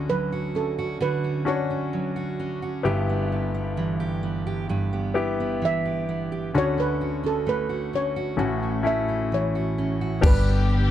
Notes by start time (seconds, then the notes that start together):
Already playing: D2 D3 C#4 D4 F#4 C#5
0.09 F#3 B4
0.32 F#4
0.55 C#4 A4
0.79 F#4
1.00 D3 F#4 B4
1.24 C#4
1.45 C#4 D4 F#4 C#5
1.70 C#4
1.93 F#3
2.16 F#4
2.39 C#4
2.62 F#4
2.83 G1 G2 B3 E4 G4
3.09 B3
3.32 G4
3.54 B3
3.77 E3
4.00 G4
4.23 B3
4.47 G4
4.69 G2 G4
4.93 B3
5.14 B3 E4 G4
5.40 B3
5.62 E3 E5
5.86 G4
6.09 B3
6.32 G4
6.54 D2 D3 C#4 D4 F#4 C#5
6.78 C#4 B4
7.01 F#4
7.24 C#4 A4
7.47 A3 B4
7.69 F#4
7.93 C#4 C#5
8.16 F#4
8.37 A1 A2 A3 C#4 F#4
8.63 C#4
8.83 A3 C#4 E4 F#4 E5
9.08 C#4
9.32 E3 C#5
9.55 F#4
9.78 C#4
10.01 F#4
10.21 G1 D3 G3 B3 D4 G4, kick, floor tom, crash
10.26 B4
10.69 D4